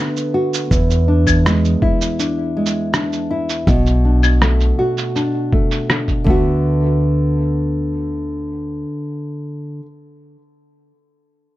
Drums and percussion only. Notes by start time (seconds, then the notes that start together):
0.17 cabasa
0.54 cabasa
0.71 kick, cabasa
0.91 cabasa
1.27 kick, cabasa, claves
1.46 cross-stick, cabasa
1.65 cabasa
1.82 kick
2.02 cabasa
2.20 cabasa
2.66 cabasa
2.94 cross-stick, cabasa
3.13 cabasa
3.50 cabasa
3.67 kick, cabasa
3.86 cabasa
4.23 cabasa, claves
4.42 cross-stick, cabasa
4.60 cabasa
4.98 cabasa
5.16 cabasa
5.53 kick
5.71 cabasa
5.90 cross-stick, cabasa
6.08 kick, cabasa
6.27 kick